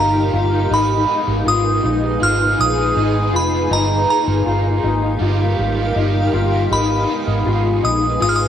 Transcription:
Already playing: G1 G3 A#3 D#4 G4 A#4 F5 A#5
0.00 F4
0.33 G1 F4
0.70 G#1 G#2 D#3 G#3 B3 D#4 G#4 B4 G#5 B5
1.07 B3 D#4 G#4
1.11 G#3
1.28 G#1
1.46 G#1 F4 D#6
1.83 A#1 D#4
2.20 G#1 G#3 B3 D#4 F4 G#4 F6
2.59 A#1 D#6
2.95 G#1 G#3 B3 D#4
2.99 G#4
3.33 F1 F4 B5
3.70 G1 G3 A#3 D#4 F4 G4 A#4 F5 A#5
4.07 D#4 F4 A#5
4.11 A#3
4.27 G1
4.46 G1 F4
4.83 G#1 D#4
5.19 G1 G3 A#3 D#4 F4
5.23 F4
5.59 G#1
5.94 G1 G3 A#3 D#4
5.99 F4
6.33 G1 F4
6.70 G#1 G#2 D#3 G#3 B3 D#4 G#4 B4 G#5 B5
7.07 B3 D#4 G#4
7.11 G#3
7.27 G#1
7.46 G#1 F4
7.83 A#1 D#4 D#6
8.20 G#1 G#3 B3 D#4 F4 D#6
8.24 G#4
8.29 F6
8.36 D#6

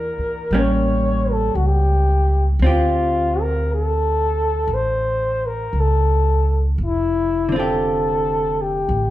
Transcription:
Already playing: E2 E3 A#3 D4 G4 A#4
0.18 muted upright bass stroke
0.51 A1 G3 A#3 C#4
0.59 C#5
1.32 A4
1.55 C#2 F#4
1.66 G4
2.59 D2 C4
2.64 F4 G4
2.69 F4
3.41 A#4
3.74 A4
4.67 A1
4.74 C5
5.46 A#4
5.73 C#2
5.80 A4
6.78 F1
6.85 E4
7.49 D3 C4
7.56 F4 G4 A4
8.61 G4
8.89 A1

